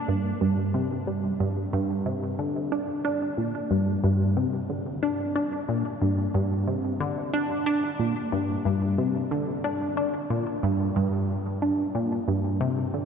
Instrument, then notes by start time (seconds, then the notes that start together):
synth arpeggio sound
0.08 G2
0.41 G2
0.74 C3
1.07 G3
1.40 G2
1.73 G2
2.06 C3
2.39 D3
2.72 D4
3.05 D4
3.38 A#2
3.71 G2
4.04 G2
4.37 C3
4.70 D3
5.03 D4
5.36 D4
5.69 A#2
6.02 G2
6.34 G2
6.67 C3
7.00 D3
7.33 D4
7.66 D4
7.99 A#2
8.32 G2
8.65 G2
8.98 C3
9.31 D3
9.64 D4
9.97 D4
10.30 A#2
10.63 G2
10.96 G2
11.62 D4
11.95 A#2
12.28 G2
12.61 C3
12.94 D3